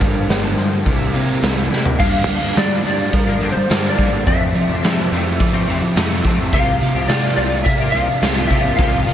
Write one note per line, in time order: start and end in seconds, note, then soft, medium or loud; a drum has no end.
0.00 0.85 G2 medium
0.00 0.27 G2 medium
0.00 0.84 D3 medium
0.00 0.56 F3 medium
0.00 0.84 G3 medium
0.00 0.85 A#3 medium
0.00 0.87 D4 medium
0.00 0.53 A#4 medium
0.00 kick medium
0.00 open hi-hat medium
0.28 0.54 G1 medium
0.28 0.85 D3 medium
0.28 snare loud
0.28 open hi-hat medium
0.57 0.83 G2 medium
0.57 0.86 F3 medium
0.57 open hi-hat medium
0.85 1.12 C2 medium
0.85 1.98 C3 medium
0.85 1.99 G3 medium
0.85 2.00 A#3 medium
0.85 2.00 E4 medium
0.85 kick loud
0.85 open hi-hat medium
1.13 1.40 C3 medium
1.13 1.99 A#3 medium
1.13 open hi-hat medium
1.42 1.68 C2 loud
1.42 1.99 G3 medium
1.42 snare loud
1.42 open hi-hat medium
1.71 1.97 C3 medium
1.71 1.99 E4 medium
1.71 snare medium
1.85 floor tom medium
1.98 2.55 G2 medium
1.98 2.25 G2 loud
1.98 2.56 D3 medium
1.98 2.44 F3 loud
1.98 2.42 A#3 loud
1.98 2.41 D4 medium
1.98 2.57 F5 medium
1.98 kick loud
1.98 crash loud
2.27 3.39 D3 medium
2.27 2.40 G3 loud
2.42 2.55 G2 loud
2.42 2.57 F3 medium
2.42 2.57 A#3 medium
2.42 2.58 D4 medium
2.56 3.13 G2 loud
2.56 2.84 D3 medium
2.56 2.86 F3 medium
2.56 2.82 G3 medium
2.56 2.85 A#3 loud
2.56 2.86 D4 loud
2.56 2.85 D5 loud
2.56 snare loud
2.56 open hi-hat medium
2.85 3.10 G2 medium
2.85 2.99 D3 medium
2.85 2.99 F3 medium
2.85 2.98 A#3 medium
2.85 2.98 D4 medium
2.85 3.12 D5 medium
2.99 muted clean electric guitar stroke medium
3.13 4.83 F3 medium
3.13 3.38 G3 medium
3.13 3.51 A#4 medium
3.13 kick loud
3.13 open hi-hat medium
3.27 3.41 F3 medium
3.27 3.41 A#3 medium
3.27 3.42 D4 medium
3.41 3.54 G2 medium
3.41 3.55 D3 medium
3.41 3.55 F3 medium
3.41 3.54 A#3 medium
3.41 3.54 D4 medium
3.51 3.90 C5 medium
3.51 muted clean electric guitar stroke soft
3.56 3.69 G3 medium
3.69 4.12 G2 medium
3.69 3.96 G2 loud
3.69 3.97 D3 loud
3.69 3.86 F3 loud
3.69 3.84 A#3 medium
3.69 3.82 D4 loud
3.69 snare loud
3.69 open hi-hat medium
3.84 3.99 F3 medium
3.84 3.99 A#3 medium
3.84 3.99 D4 medium
3.89 4.27 D5 medium
3.98 4.25 D3 medium
3.98 4.27 F3 medium
3.98 4.11 G3 medium
3.98 4.26 A#3 medium
3.98 4.26 D4 medium
3.98 kick medium
4.12 4.25 G2 medium
4.26 4.81 F2 medium
4.26 4.52 F2 loud
4.26 4.82 C3 medium
4.26 4.70 E3 medium
4.26 4.69 A3 loud
4.26 4.68 C4 loud
4.26 5.08 E5 medium
4.26 kick loud
4.26 open hi-hat medium
4.55 5.66 C3 medium
4.55 4.68 F3 loud
4.68 4.81 F2 loud
4.68 4.82 E3 medium
4.68 4.83 A3 medium
4.68 4.84 C4 medium
4.82 5.39 F2 medium
4.82 5.10 C3 medium
4.82 5.11 E3 medium
4.82 5.08 F3 medium
4.82 5.12 A3 medium
4.82 5.13 C4 medium
4.82 snare loud
4.82 open hi-hat medium
5.11 5.37 F2 medium
5.11 5.24 C3 medium
5.11 5.24 E3 medium
5.11 5.24 A3 medium
5.11 5.25 C4 medium
5.25 muted clean electric guitar stroke soft
5.40 6.53 E3 medium
5.40 5.65 F3 medium
5.40 kick loud
5.40 open hi-hat soft
5.53 5.68 E3 medium
5.53 5.69 A3 medium
5.53 5.70 C4 medium
5.68 5.81 F2 medium
5.68 5.83 C3 medium
5.68 5.83 E3 medium
5.68 5.82 A3 medium
5.68 5.83 C4 medium
5.82 5.95 F3 loud
5.82 muted clean electric guitar stroke soft
5.95 6.21 F2 loud
5.95 6.39 F2 medium
5.95 6.23 C3 medium
5.95 6.12 E3 medium
5.95 6.11 A3 medium
5.95 6.10 C4 medium
5.95 snare loud
5.95 open hi-hat medium
6.11 6.24 E3 medium
6.11 6.25 A3 medium
6.11 6.26 C4 medium
6.25 6.51 C3 medium
6.25 6.52 E3 medium
6.25 6.37 F3 medium
6.25 6.52 A3 medium
6.25 6.55 C4 medium
6.25 kick medium
6.38 6.51 F2 medium
6.52 6.78 C2 loud
6.52 9.14 C3 medium
6.52 7.09 C3 medium
6.52 7.10 F3 medium
6.52 9.14 A#3 medium
6.52 6.97 A#3 loud
6.52 9.14 F4 medium
6.52 6.96 F4 loud
6.52 6.95 G4 medium
6.52 7.06 F5 loud
6.52 kick loud
6.52 open hi-hat medium
6.81 6.93 C3 medium
6.81 7.92 F3 medium
6.94 7.07 C2 medium
6.94 7.10 A#3 medium
6.94 7.11 F4 medium
6.94 7.11 G4 medium
7.08 7.35 C3 loud
7.08 7.86 C3 loud
7.08 7.37 F3 medium
7.08 7.38 A#3 medium
7.08 7.39 F4 loud
7.08 7.40 G4 loud
7.08 7.35 D5 medium
7.08 snare loud
7.08 open hi-hat medium
7.36 7.63 C2 medium
7.36 7.52 F3 medium
7.36 7.52 A#3 medium
7.36 7.52 F4 medium
7.36 7.63 D5 medium
7.40 7.53 G4 medium
7.53 muted clean electric guitar stroke soft
7.64 7.92 C3 medium
7.64 9.07 A#3 medium
7.64 7.91 E5 medium
7.64 kick loud
7.64 open hi-hat medium
7.81 7.93 A#3 medium
7.81 7.94 F4 medium
7.81 7.95 G4 medium
7.91 8.07 C2 medium
7.91 8.08 F3 medium
7.91 8.08 A#3 medium
7.91 8.45 F5 loud
7.96 8.08 F4 medium
7.96 8.08 G4 medium
8.08 8.21 C3 loud
8.08 muted clean electric guitar stroke soft
8.21 8.47 C2 loud
8.21 8.78 C3 medium
8.21 8.49 F3 medium
8.21 8.37 A#3 loud
8.21 8.35 F4 loud
8.21 8.35 G4 loud
8.21 snare loud
8.21 open hi-hat medium
8.35 8.50 A#3 medium
8.35 8.50 F4 medium
8.35 8.52 G4 medium
8.47 8.63 C3 medium
8.47 8.78 F3 medium
8.47 8.78 A#3 medium
8.47 8.75 E5 medium
8.47 kick medium
8.52 8.79 F4 medium
8.52 8.79 G4 medium
8.64 8.77 C2 medium
8.76 9.04 C2 medium
8.76 9.14 C3 loud
8.76 9.14 F3 loud
8.76 9.14 A#3 loud
8.76 9.14 F5 medium
8.76 kick loud
8.76 open hi-hat medium
8.80 9.14 F4 loud
8.80 9.14 G4 loud
9.07 9.14 C3 loud
9.07 9.14 F3 medium